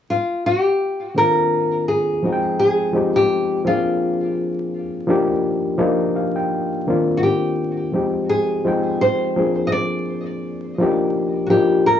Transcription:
0.10 F4
0.46 G4
1.15 D#3 A#3 C4 D4 F4 A#4
1.88 G#4
2.22 F3 G#3 C4 D#4 F#4
2.32 G5
2.59 G#4
2.92 F3 G#3 C4 D#4 G4
3.16 G4
3.65 F3 A#3 C4 D4 F4 G#4
5.07 F3 A#3 D4 D#4 G4
5.78 F3 A#3 D4 D#4 F4
6.16 F5
6.36 G5
6.87 D#3 A#3 C4 D4 F4
7.17 F#4
7.23 G4
7.92 F3 G#3 C4 D#4 G4
8.29 G#4
8.64 F3 G#3 C4 D#4 G5
9.01 C5
9.36 F3 A#3 C4 D4 G#4
9.67 D#5
9.72 D5
10.79 F3 A#3 D4 D#4 G4
11.46 F3 F#4 G4
11.51 A#3 D4 D#4 F4
11.86 A#4

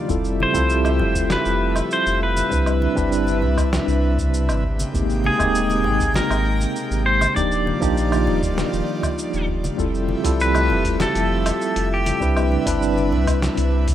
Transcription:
Already playing: F3 A#3 D4 D#4 G4
0.08 F1 F3 G3 A3 C4 E4 F4 G4 A4 E5, kick, shaker
0.24 shaker
0.40 C5, high conga
0.53 C2 G3 C4 E4 F4 A4, kick, shaker
0.70 shaker
0.85 high conga, low woodblock, shaker
0.99 F1, low conga
1.15 kick, shaker
1.30 B4, snare, high conga, shaker
1.45 F1, shaker
1.75 high conga, low woodblock, shaker
1.91 C5, shaker
2.06 F1, shaker
2.23 B4
2.37 high conga, shaker
2.50 C2 C3 G3 C4 D4 E4 B4, kick, shaker
2.66 low woodblock, shaker
2.82 high conga
2.95 G1 G3 C4 D4 E4 B4, kick, shaker
3.12 shaker
3.27 high conga, shaker
3.42 C2, low conga
3.58 kick, low woodblock, shaker
3.73 snare, high conga, shaker
3.88 C2, shaker
4.19 kick, high conga, shaker
4.34 shaker
4.49 G#1, low woodblock, shaker
4.63 G#3 A#3 G5, kick
4.79 high conga, shaker
4.93 G#1 G#3 A#3 C4 D#4 G4, kick, shaker
5.10 shaker
5.24 G#4, high conga
5.38 D#1 G#3 A#3 C4 D#4 G4, kick, low woodblock, shaker
5.55 shaker
5.70 high conga, shaker
5.84 G#1, low conga
6.00 kick, shaker
6.14 A#4, snare, high conga, shaker
6.30 G#1, low woodblock, shaker
6.60 high conga, shaker
6.76 shaker
6.91 G#1, shaker
7.06 C5
7.21 high conga, low woodblock, shaker
7.35 D#1 D#3 F3 G3 A#3 D4 D#4 F4 G4 D5, kick, shaker
7.52 shaker
7.67 high conga
7.80 A#1 F3 A#3 D4 D#4 G4, kick, shaker
7.97 shaker
8.12 high conga, low woodblock, shaker
8.27 D#1, low conga
8.43 kick, shaker
8.58 snare, high conga, shaker
8.73 D#1, shaker
9.03 kick, high conga, low woodblock, shaker
9.18 shaker
9.33 D#1, shaker
9.49 kick
9.64 high conga, shaker
9.77 F1 F3 G3 A3 C4 E4 F4 G4 A4 E5, kick, shaker
9.95 shaker
10.09 high conga
10.23 C2 G3 C4 E4 F4 A4, kick, closed hi-hat, shaker
10.40 B4, shaker
10.54 high conga, low woodblock, shaker
10.70 F1, low conga
10.85 kick, closed hi-hat, shaker
11.00 A4, snare, high conga, shaker
11.15 F1, closed hi-hat, shaker
11.46 closed hi-hat, high conga, low woodblock, shaker
11.61 shaker
11.76 F1, closed hi-hat, shaker
11.94 G4
12.06 closed hi-hat, high conga, shaker
12.20 C2 C3 G3 C4 D4 E4 B4, kick, shaker
12.37 low woodblock, shaker
12.52 high conga
12.65 G1 G3 C4 D4 E4 B4, kick, closed hi-hat, shaker
12.82 shaker
12.97 high conga, shaker
13.12 C2, low conga
13.27 kick, closed hi-hat, low woodblock, shaker
13.42 snare, high conga, shaker
13.57 C2, closed hi-hat, shaker
13.88 kick, closed hi-hat, high conga, shaker

